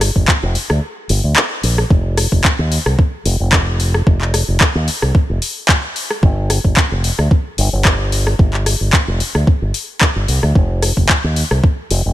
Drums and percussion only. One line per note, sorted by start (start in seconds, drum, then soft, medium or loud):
0.01 cross-stick medium
0.01 open hi-hat loud
0.16 kick medium
0.28 kick loud
0.28 clap loud
0.55 open hi-hat medium
0.70 cross-stick medium
1.09 open hi-hat loud
1.36 clap loud
1.63 open hi-hat medium
1.78 cross-stick medium
1.90 kick loud
2.17 cross-stick medium
2.17 open hi-hat loud
2.32 kick medium
2.44 kick loud
2.44 clap loud
2.72 open hi-hat loud
2.86 cross-stick medium
2.99 kick loud
3.26 open hi-hat loud
3.52 kick loud
3.52 clap loud
3.80 open hi-hat medium
3.94 cross-stick medium
4.07 kick loud
4.21 clap soft
4.34 cross-stick medium
4.34 open hi-hat loud
4.61 kick loud
4.61 clap loud
4.88 open hi-hat loud
5.02 cross-stick medium
5.15 kick loud
5.42 open hi-hat loud
5.69 kick loud
5.69 clap loud
5.96 open hi-hat medium
6.10 cross-stick medium
6.23 kick loud
6.50 cross-stick medium
6.50 open hi-hat loud
6.64 kick medium
6.77 kick loud
6.77 clap loud
7.04 open hi-hat loud
7.19 cross-stick medium
7.31 kick loud
7.58 open hi-hat loud
7.85 kick loud
7.85 clap loud
8.12 open hi-hat medium
8.27 cross-stick medium
8.39 kick loud
8.54 clap soft
8.66 cross-stick medium
8.66 open hi-hat loud
8.93 kick loud
8.93 clap loud
9.20 open hi-hat loud
9.35 cross-stick medium
9.47 kick loud
9.74 open hi-hat loud
10.01 kick loud
10.01 clap loud
10.28 open hi-hat loud
10.43 cross-stick medium
10.55 kick loud
10.82 cross-stick medium
10.82 open hi-hat loud
10.97 kick medium
11.09 kick loud
11.09 clap loud
11.36 open hi-hat medium
11.51 cross-stick medium
11.64 kick loud
11.91 open hi-hat loud